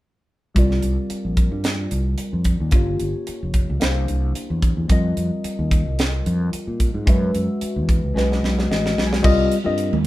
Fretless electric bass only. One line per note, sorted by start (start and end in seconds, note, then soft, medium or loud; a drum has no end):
0.56 0.79 C2 medium
0.84 0.96 C2 medium
1.11 muted fretless electric bass stroke soft
1.25 1.48 A#1 medium
1.52 1.86 G2 medium
1.92 2.15 C2 medium
2.33 2.56 F2 medium
2.60 2.71 D#2 medium
2.72 2.96 G1 medium
3.01 3.13 G1 medium
3.29 muted fretless electric bass stroke soft
3.43 3.65 F1 medium
3.70 3.80 C#2 medium
3.82 4.05 C2 medium
4.09 4.32 C2 medium
4.50 4.73 E2 medium
4.77 4.88 E2 medium
4.90 5.13 F2 medium
5.17 5.29 F2 medium
5.44 muted fretless electric bass stroke soft
5.59 5.82 D#2 medium
5.86 6.20 C2 medium
6.26 6.49 F2 medium
6.54 muted fretless electric bass stroke soft
6.67 6.90 A#2 medium
6.94 7.05 G#2 medium
7.07 7.30 F#2 medium
7.35 7.47 F#2 medium
7.62 muted fretless electric bass stroke soft
7.76 7.99 E2 medium
8.04 8.14 C#2 medium
8.16 8.39 B1 medium
8.43 8.66 B1 medium
8.71 8.95 A1 medium
8.98 9.22 B1 medium
9.24 9.47 C2 medium
9.66 9.89 G2 medium
9.93 10.07 D#2 medium